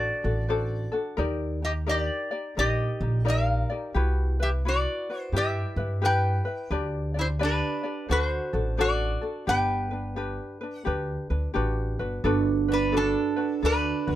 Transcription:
0.00 0.24 D4 medium
0.00 0.24 F#4 medium
0.00 0.91 F#4 medium
0.00 0.23 A4 medium
0.00 0.24 C5 medium
0.00 0.91 D5 medium
0.24 0.86 A1 medium
0.24 0.48 D4 soft
0.24 0.49 F#4 soft
0.24 0.48 A4 soft
0.49 0.93 D4 medium
0.49 0.92 F#4 medium
0.49 0.91 A4 medium
0.49 0.91 C5 medium
0.92 1.18 D4 soft
0.92 1.18 F#4 soft
0.92 1.18 A4 medium
1.17 2.08 D#2 medium
1.17 1.62 D#4 medium
1.17 1.61 G4 medium
1.17 1.62 A#4 medium
1.17 1.63 D5 medium
1.62 1.86 D#4 soft
1.62 1.86 G4 soft
1.62 1.72 G4 medium
1.62 1.71 D#5 medium
1.87 2.32 D#4 medium
1.87 2.31 G4 medium
1.87 2.31 A#4 medium
1.87 2.30 D5 medium
1.87 2.00 D#5 medium
1.91 2.54 G4 medium
2.00 2.58 D5 medium
2.31 2.56 D#4 soft
2.31 2.56 G4 soft
2.31 2.56 D5 medium
2.57 2.86 A#1 medium
2.57 3.01 D#4 medium
2.57 3.00 G4 medium
2.57 3.23 G4 medium
2.57 3.01 A#4 medium
2.57 3.28 D#5 medium
3.01 3.62 A#1 medium
3.01 3.24 D#4 soft
3.01 3.24 G4 soft
3.25 3.70 D#4 medium
3.25 3.70 G4 medium
3.25 3.70 A#4 medium
3.25 3.92 A#4 medium
3.25 3.68 D5 medium
3.30 3.93 F5 medium
3.70 3.96 D#4 soft
3.70 3.93 G4 soft
3.70 3.95 D5 medium
3.94 4.85 C2 medium
3.94 4.40 E4 medium
3.94 4.40 F#4 medium
3.94 4.39 G4 medium
3.94 4.38 B4 medium
4.40 4.64 E4 soft
4.40 4.49 G4 medium
4.40 4.64 B4 soft
4.40 4.49 E5 medium
4.65 5.09 E4 medium
4.65 5.09 F#4 medium
4.65 5.31 F#4 medium
4.65 5.08 B4 medium
4.65 5.21 D5 medium
5.10 5.33 E4 soft
5.10 5.34 F#4 soft
5.10 5.33 B4 medium
5.21 5.37 C5 medium
5.32 5.61 G2 medium
5.32 5.78 E4 medium
5.32 5.77 G4 medium
5.32 5.76 B4 medium
5.36 6.00 G4 medium
5.36 6.07 E5 medium
5.76 6.38 G2 medium
5.76 6.01 E4 soft
5.76 6.02 B4 soft
6.02 6.46 E4 medium
6.02 6.46 G4 medium
6.02 6.44 B4 medium
6.02 6.69 B4 medium
6.06 6.69 G5 medium
6.45 6.71 E4 soft
6.45 6.69 B4 medium
6.71 7.61 D2 medium
6.71 7.15 D4 medium
6.71 7.15 G4 medium
6.71 7.15 B4 medium
6.71 7.13 D5 medium
7.14 7.39 D4 soft
7.14 7.39 G4 soft
7.14 7.40 D5 soft
7.19 7.25 E4 medium
7.19 7.27 C5 medium
7.39 7.85 D4 medium
7.39 8.07 D4 medium
7.39 7.83 G4 medium
7.39 7.84 B4 medium
7.39 7.82 D5 medium
7.45 8.08 B4 medium
7.83 8.08 D4 soft
7.83 8.09 G4 soft
7.83 8.08 D5 soft
8.09 8.38 D2 medium
8.09 8.54 D4 medium
8.09 8.53 F#4 medium
8.09 8.75 F#4 medium
8.09 8.52 A4 medium
8.09 8.23 B4 medium
8.09 8.53 C5 medium
8.23 8.82 C5 medium
8.53 9.15 A1 medium
8.53 8.77 D4 soft
8.53 8.77 F#4 soft
8.53 8.77 A4 soft
8.77 9.22 D4 medium
8.77 9.21 F#4 medium
8.77 9.45 F#4 medium
8.77 9.20 A4 medium
8.77 9.21 C5 medium
8.77 9.51 D5 medium
9.21 9.47 D4 soft
9.21 9.48 F#4 soft
9.21 9.47 A4 soft
9.47 10.37 G1 medium
9.47 9.92 D4 medium
9.47 9.90 G4 medium
9.47 9.90 B4 medium
9.47 11.52 B4 medium
9.47 10.78 G5 medium
9.91 10.15 D4 soft
9.91 10.16 B4 soft
10.16 10.61 D4 medium
10.16 10.60 G4 medium
10.16 10.60 B4 medium
10.61 10.84 D4 soft
10.61 10.84 B4 medium
10.78 11.52 F#5 medium
10.85 11.15 D2 medium
10.85 11.30 D4 medium
10.85 11.30 G4 medium
10.85 11.29 B4 medium
11.30 11.47 D2 medium
11.30 11.53 D4 soft
11.30 11.53 B4 medium
11.54 11.96 A1 medium
11.54 11.99 D4 medium
11.54 11.99 F#4 medium
11.54 11.99 G4 medium
11.54 11.98 B4 medium
11.99 12.22 G1 medium
11.99 12.24 D4 soft
11.99 12.24 F#4 soft
11.99 12.24 B4 soft
12.24 13.14 G1 medium
12.24 14.15 D4 medium
12.24 12.69 D4 loud
12.24 12.68 F#4 medium
12.24 12.68 A4 medium
12.24 12.67 B4 medium
12.68 12.92 D4 soft
12.68 12.93 D4 soft
12.68 12.93 F#4 soft
12.68 12.93 B4 soft
12.73 12.97 B4 medium
12.92 13.37 D4 medium
12.92 13.37 F#4 medium
12.92 13.37 A4 medium
12.92 13.35 B4 medium
12.97 13.60 D4 medium
12.97 13.65 A4 medium
13.36 13.63 D4 soft
13.36 13.63 F#4 soft
13.36 13.62 B4 soft
13.63 13.92 D2 medium
13.63 14.07 D4 medium
13.63 14.15 D4 medium
13.63 14.07 F#4 medium
13.63 14.07 A4 medium
13.63 14.06 B4 medium
13.63 14.15 B4 medium
14.07 14.15 D2 medium
14.07 14.15 D4 soft
14.07 14.15 F#4 medium
14.07 14.15 B4 medium

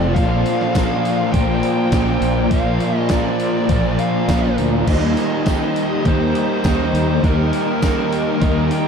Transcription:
0.00 0.13 F1 medium
0.00 0.14 F2 medium
0.00 0.14 C3 medium
0.00 0.17 F3 medium
0.00 0.15 A3 medium
0.00 0.18 C4 medium
0.00 4.84 F4 medium
0.00 0.11 A4 medium
0.00 0.12 C5 medium
0.00 0.18 D5 loud
0.00 0.11 A5 medium
0.14 0.43 A#1 loud
0.14 0.74 A#2 loud
0.14 0.75 F3 medium
0.14 0.75 A#3 loud
0.14 4.84 C5 medium
0.14 4.84 D5 medium
0.14 1.31 F5 loud
0.14 8.88 A#5 loud
0.14 kick loud
0.14 open hi-hat medium
0.18 0.76 D4 loud
0.46 open hi-hat medium
0.61 snare soft
0.74 1.32 A#2 medium
0.74 1.33 F3 medium
0.74 1.35 A#3 medium
0.74 1.35 D4 medium
0.74 kick loud
0.74 snare loud
0.74 open hi-hat medium
0.74 tambourine loud
1.05 open hi-hat medium
1.32 1.60 A#1 loud
1.32 1.91 A#2 loud
1.32 1.92 F3 loud
1.32 1.93 A#3 loud
1.32 2.51 G5 loud
1.32 kick loud
1.32 open hi-hat medium
1.36 1.93 D4 loud
1.63 open hi-hat medium
1.92 2.19 A#1 medium
1.92 2.50 A#2 medium
1.92 2.51 F3 medium
1.92 2.53 A#3 medium
1.92 2.53 D4 medium
1.92 kick loud
1.92 snare loud
1.92 open hi-hat medium
1.92 tambourine loud
2.21 2.48 A#1 loud
2.21 open hi-hat medium
2.51 2.78 A#1 loud
2.51 3.10 A#2 medium
2.51 3.11 F3 medium
2.51 3.12 A#3 loud
2.51 3.12 D4 loud
2.51 2.98 F5 loud
2.51 kick loud
2.51 open hi-hat medium
2.80 open hi-hat medium
2.98 3.12 D#5 loud
3.09 3.69 A#2 medium
3.09 3.70 F3 medium
3.09 3.71 A#3 medium
3.09 4.02 D5 loud
3.09 kick loud
3.09 snare loud
3.09 open hi-hat medium
3.09 tambourine loud
3.13 3.71 D4 medium
3.40 open hi-hat medium
3.69 3.96 A#1 loud
3.69 4.28 A#2 loud
3.69 4.29 F3 loud
3.69 4.30 A#3 loud
3.69 4.30 D4 loud
3.69 kick loud
3.69 open hi-hat medium
3.99 4.54 F5 medium
3.99 open hi-hat medium
4.29 4.55 A#1 medium
4.29 4.86 A#2 medium
4.29 4.87 F3 medium
4.29 4.89 A#3 medium
4.29 4.87 D4 medium
4.29 kick loud
4.29 snare loud
4.29 open hi-hat medium
4.29 tambourine loud
4.58 4.86 D2 medium
4.58 open hi-hat medium
4.87 5.14 D#2 loud
4.87 5.46 D#3 loud
4.87 5.47 G3 medium
4.87 5.48 A#3 loud
4.87 5.49 D#4 loud
4.87 8.88 G4 medium
4.87 8.88 A#4 medium
4.87 8.88 D#5 medium
4.87 6.07 D#5 loud
4.87 kick loud
4.87 crash loud
5.17 open hi-hat medium
5.46 6.05 D#3 medium
5.46 6.05 G3 medium
5.46 6.07 A#3 medium
5.46 6.07 D#4 medium
5.46 kick loud
5.46 snare loud
5.46 open hi-hat medium
5.46 tambourine loud
5.76 open hi-hat medium
6.05 6.33 D#2 medium
6.05 6.63 D#3 medium
6.05 6.64 G3 loud
6.05 6.66 A#3 loud
6.05 6.66 D#4 loud
6.05 7.28 C5 medium
6.05 kick loud
6.05 open hi-hat medium
6.35 open hi-hat medium
6.64 6.92 D#2 medium
6.64 7.23 D#3 medium
6.64 7.24 G3 medium
6.64 7.25 A#3 medium
6.64 7.25 D#4 medium
6.64 kick loud
6.64 snare loud
6.64 open hi-hat medium
6.64 tambourine loud
6.93 7.21 D#2 medium
6.93 open hi-hat medium
7.23 7.50 D#2 loud
7.23 7.82 D#3 medium
7.23 7.83 G3 loud
7.23 7.84 A#3 loud
7.23 7.84 D#4 loud
7.23 8.76 A#4 medium
7.23 kick loud
7.23 open hi-hat medium
7.53 open hi-hat medium
7.82 8.40 D#3 medium
7.82 8.41 G3 medium
7.82 8.43 A#3 medium
7.82 8.43 D#4 medium
7.82 kick loud
7.82 snare loud
7.82 open hi-hat medium
7.82 tambourine loud
8.12 open hi-hat medium
8.41 8.69 D#2 medium
8.41 8.88 D#3 medium
8.41 8.88 G3 loud
8.41 8.88 A#3 loud
8.41 8.88 D#4 loud
8.41 kick loud
8.41 open hi-hat medium
8.71 8.88 G5 medium
8.71 open hi-hat medium

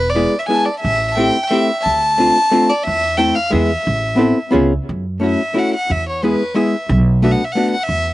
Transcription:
0.00 0.25 E1 medium
0.00 0.11 B4 loud
0.09 0.40 D5 loud
0.15 0.34 G#3 medium
0.15 0.34 B3 soft
0.15 0.34 E4 medium
0.15 0.34 G#4 medium
0.39 0.47 E5 medium
0.46 0.68 G#3 soft
0.46 0.68 B3 soft
0.46 0.55 G#5 loud
0.50 0.69 E4 medium
0.50 0.68 G#4 soft
0.50 0.56 A5 medium
0.55 0.67 G#5 medium
0.65 0.79 D5 medium
0.80 1.13 E5 loud
0.84 1.28 A1 loud
1.11 1.48 G5 loud
1.11 1.17 A5 medium
1.17 1.36 A3 medium
1.17 1.36 C4 medium
1.17 1.37 E4 medium
1.17 1.37 G4 medium
1.48 1.69 A3 medium
1.48 1.70 C4 medium
1.48 1.70 E4 medium
1.48 1.84 E5 loud
1.53 1.70 G4 medium
1.83 2.29 D2 medium
1.83 2.71 A5 loud
2.18 2.37 A3 medium
2.18 2.37 C4 medium
2.18 2.38 D4 medium
2.18 2.38 F4 medium
2.51 2.70 A3 medium
2.51 2.71 C4 medium
2.51 2.71 D4 medium
2.51 2.71 F4 medium
2.69 2.85 D5 loud
2.84 3.30 E2 medium
2.84 3.19 E5 loud
3.17 3.37 A3 medium
3.17 3.37 C4 soft
3.17 3.37 E4 medium
3.17 3.37 A4 medium
3.17 3.37 G5 loud
3.35 3.53 F5 medium
3.50 3.74 E2 medium
3.50 3.70 G#3 medium
3.50 3.70 B3 medium
3.50 3.71 E4 medium
3.50 3.71 G#4 medium
3.50 4.54 E5 loud
3.87 4.31 A1 loud
4.16 4.37 B3 medium
4.16 4.37 C4 medium
4.16 4.38 E4 medium
4.16 4.38 A4 medium
4.51 4.77 C#2 medium
4.51 4.71 B3 medium
4.51 4.72 C#4 medium
4.51 4.72 F4 medium
4.51 4.73 G#4 medium
4.89 5.33 F#2 medium
5.20 5.40 A3 medium
5.20 5.40 C#4 medium
5.20 5.41 E4 soft
5.20 5.41 F#4 medium
5.25 5.60 E5 medium
5.54 5.74 A3 medium
5.54 5.74 C#4 medium
5.54 5.74 E4 medium
5.54 5.75 F#4 medium
5.58 5.74 F#5 medium
5.75 5.93 F#5 medium
5.90 6.33 E2 medium
5.90 6.09 E5 loud
6.09 6.25 C#5 medium
6.23 6.41 G#3 medium
6.23 6.42 B3 medium
6.23 6.42 E4 medium
6.23 6.42 G#4 medium
6.23 6.57 B4 medium
6.54 6.74 G#3 medium
6.54 6.74 B3 medium
6.54 6.75 E4 medium
6.54 6.75 G#4 medium
6.54 6.89 E5 medium
6.89 7.33 B1 loud
7.22 7.41 A3 medium
7.22 7.42 B3 soft
7.22 7.42 D4 medium
7.22 7.42 F#4 medium
7.22 7.33 E5 medium
7.31 7.46 F#5 medium
7.45 7.54 E5 medium
7.52 7.74 A3 medium
7.52 7.70 F#5 medium
7.56 7.74 B3 medium
7.56 7.75 D4 medium
7.56 7.75 F#4 medium
7.71 7.84 F#5 medium
7.83 8.14 E5 loud
7.89 8.14 E2 medium

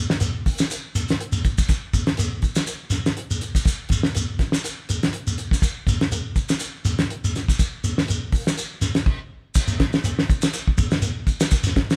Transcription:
0.10 snare medium
0.10 shekere soft
0.20 closed hi-hat medium
0.20 shekere medium
0.46 kick medium
0.46 open hi-hat medium
0.46 shekere soft
0.58 snare medium
0.58 shekere medium
0.71 closed hi-hat medium
0.71 shekere medium
0.95 closed hi-hat soft
0.95 shekere medium
1.08 snare medium
1.08 closed hi-hat medium
1.08 shekere soft
1.20 closed hi-hat medium
1.32 shekere medium
1.44 kick medium
1.44 closed hi-hat soft
1.44 shekere soft
1.58 kick medium
1.58 shekere medium
1.69 kick medium
1.69 closed hi-hat medium
1.69 shekere medium
1.93 kick medium
1.93 closed hi-hat soft
1.93 shekere medium
2.07 snare medium
2.07 closed hi-hat soft
2.07 shekere soft
2.17 closed hi-hat medium
2.17 shekere medium
2.42 kick medium
2.42 closed hi-hat soft
2.42 shekere soft
2.55 snare medium
2.55 closed hi-hat soft
2.55 shekere medium
2.67 closed hi-hat medium
2.67 shekere medium
2.90 snare soft
2.90 closed hi-hat soft
2.90 shekere medium
3.06 snare medium
3.06 closed hi-hat soft
3.06 shekere soft
3.17 closed hi-hat medium
3.31 shekere medium
3.41 closed hi-hat soft
3.41 shekere soft
3.55 kick medium
3.55 closed hi-hat soft
3.55 shekere medium
3.65 kick medium
3.65 closed hi-hat medium
3.65 shekere medium
3.89 kick medium
3.89 closed hi-hat soft
3.89 shekere medium
4.03 snare medium
4.03 shekere soft
4.15 closed hi-hat medium
4.15 shekere medium
4.39 kick medium
4.39 snare soft
4.39 closed hi-hat soft
4.39 shekere soft
4.52 snare medium
4.52 shekere medium
4.64 closed hi-hat medium
4.64 shekere medium
4.89 closed hi-hat soft
4.89 shekere medium
5.03 snare medium
5.03 closed hi-hat medium
5.03 shekere soft
5.13 closed hi-hat medium
5.27 shekere medium
5.38 closed hi-hat medium
5.38 shekere soft
5.51 kick medium
5.51 snare soft
5.51 shekere medium
5.62 kick medium
5.62 closed hi-hat medium
5.62 shekere medium
5.87 kick medium
5.87 closed hi-hat soft
5.87 shekere medium
6.01 snare medium
6.01 closed hi-hat medium
6.01 shekere soft
6.12 closed hi-hat medium
6.12 shekere medium
6.36 kick medium
6.36 closed hi-hat soft
6.36 shekere soft
6.49 snare medium
6.49 closed hi-hat soft
6.49 shekere medium
6.59 closed hi-hat medium
6.59 shekere medium
6.85 closed hi-hat soft
6.85 shekere medium
6.99 snare medium
6.99 closed hi-hat soft
6.99 shekere soft
7.10 closed hi-hat medium
7.24 shekere medium
7.35 snare soft
7.35 closed hi-hat soft
7.35 shekere soft
7.48 kick medium
7.48 closed hi-hat soft
7.48 shekere medium
7.59 kick medium
7.59 closed hi-hat medium
7.59 shekere medium
7.84 closed hi-hat soft
7.84 shekere medium
7.98 snare medium
7.98 shekere soft
8.08 closed hi-hat medium
8.08 shekere medium
8.32 kick medium
8.32 open hi-hat medium
8.32 shekere soft
8.47 snare medium
8.47 shekere medium
8.58 closed hi-hat medium
8.58 shekere medium
8.81 snare soft
8.81 closed hi-hat soft
8.81 shekere medium
8.95 snare medium
8.95 closed hi-hat medium
8.95 shekere soft
9.06 kick medium
9.06 crash medium
9.55 kick medium
9.55 crash medium
9.55 shekere medium
9.68 shekere medium
9.80 kick medium
9.80 snare medium
9.80 closed hi-hat soft
9.93 snare medium
9.93 shekere soft
10.04 closed hi-hat medium
10.04 shekere medium
10.19 snare medium
10.30 kick medium
10.30 closed hi-hat medium
10.30 shekere soft
10.42 snare medium
10.42 closed hi-hat soft
10.42 shekere medium
10.53 closed hi-hat medium
10.53 shekere medium
10.68 kick medium
10.78 kick medium
10.78 closed hi-hat soft
10.78 shekere medium
10.91 snare medium
10.91 shekere soft
11.02 closed hi-hat medium
11.02 shekere medium
11.27 kick medium
11.27 closed hi-hat soft
11.27 shekere soft
11.40 snare medium
11.40 shekere medium
11.51 kick medium
11.51 closed hi-hat medium
11.51 shekere medium
11.63 snare soft
11.63 shekere medium
11.76 kick medium
11.76 snare medium
11.76 closed hi-hat medium
11.90 snare medium
11.90 closed hi-hat medium
11.90 shekere soft

